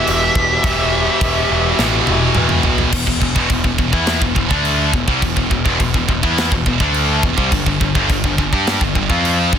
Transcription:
Already playing: E2 B2 E3 G4 E5
0.07 E1, crash
0.35 E1, kick
0.64 E1 E2 B2 E3, kick, crash
1.21 E1, kick, crash
1.50 E1
1.78 A1 E2 B2 E3, snare
2.07 E1, high tom
2.35 E2, mid tom
2.49 mid tom
2.63 B1, floor tom
2.78 floor tom
2.92 E1 E2 B2, kick, crash
3.07 E1 E2 B2, kick
3.20 E1 E2 B2, kick
3.35 E1 E2 B2, kick
3.50 E1 E2 B2, kick, crash
3.64 E1 E2 B2, kick
3.78 E1 E2 B2, kick
3.92 E2 E3 B3 E4, kick
4.07 snare, crash
4.21 E1 E2 B2, kick
4.35 E1 E2 B2, kick
4.49 D2 D3 A3 D4, kick
4.65 crash
4.92 E1 E2 B2, kick
5.08 C2 C3 G3, kick
5.22 E1 E2 B2, kick, crash
5.36 E1 E2 B2, kick
5.50 E1 E2 B2, kick
5.65 E1 E2 B2, kick
5.79 E1 E2 B2, kick, crash
5.94 E1 E2 B2, kick
6.08 E1 E2 B2, kick
6.23 E2 E3 B3 E4, kick
6.38 snare, crash
6.51 E1 E2 B2, kick
6.66 E1 E2 B2, kick
6.80 D2 D3 A3 D4, kick
6.94 crash
7.23 E1 E2 B2, kick
7.37 C2 C3 G3, kick
7.52 G1 G2 D3, kick, crash
7.66 G1 G2 D3, kick
7.80 G1 G2 D3, kick
7.95 G1 G2 D3, kick
8.10 G1 G2 D3, kick, crash
8.24 G1 G2 D3, kick
8.38 G1 G2 D3, kick
8.53 G2 G3 D4 G4, kick
8.67 snare, crash
8.81 G1 G2 D3, kick
8.95 G1 G2 D3, kick
9.10 F2 F3 C4 F4, kick
9.25 crash
9.53 G1 G2 D3, kick

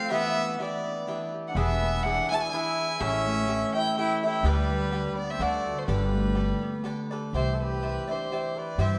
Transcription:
Already playing: F3 A3 C4 G4 A4 F5
0.10 E3 B3 D4 G4 B4 E5
0.37 B3
0.59 E3 B3 D4 G4 B4 D5 E5
0.86 D4
1.07 E3 D4 G4 B4 E5
1.34 G4
1.48 D4 F#5
1.55 E1 E3 B3 D4 G#4 B4 E5
1.82 B3
2.03 E3 D4 G#4 B4 E5 F#5
2.30 D4 E4 G#4 B4 E5 G#5
2.35 F#4 A5
2.41 E4 G#5
2.52 E3 D4 E4 G#4 B4 E5 G#5
2.78 G#4
3.00 A1 E3 C#4 G4 A4 C#5 E5
3.26 A3
3.48 E3 G4 A4 C#5 E5
3.74 C#4 E4 A4 C#5 E5 G5
3.96 E3 E4 G4 A4 C#5 E5 G5
4.22 E4 G4 A4 C#5 E5 G5
4.43 D2 D3 G3 D4 G4 B4 D5
4.70 G3
4.91 D3 D4 G4 B4 D5
5.17 B3 D5
5.30 C4 E5
5.39 D2 D3 A3 D4 A4 D5 F#5
5.65 F#4
5.79 A3 C5
5.88 G1 D3 G3 G4 A4 B4 D5
6.13 A3
6.35 D3 G4 A4 B4 D5
6.62 B3
6.84 D3 G4 A4 B4 D5
7.11 G4 A4 B4 D5
7.33 C2 E3 G4 C5 D5 E5
7.52 A4 C5
7.60 C4 G4 B4
7.82 E3 G4 C5 D5 E5
8.07 D4 G4 C5 D5 E5
8.32 E3 G4 C5 D5 E5
8.58 G4 B4 D5
8.78 G2 E3 G4 C5 D5 E5

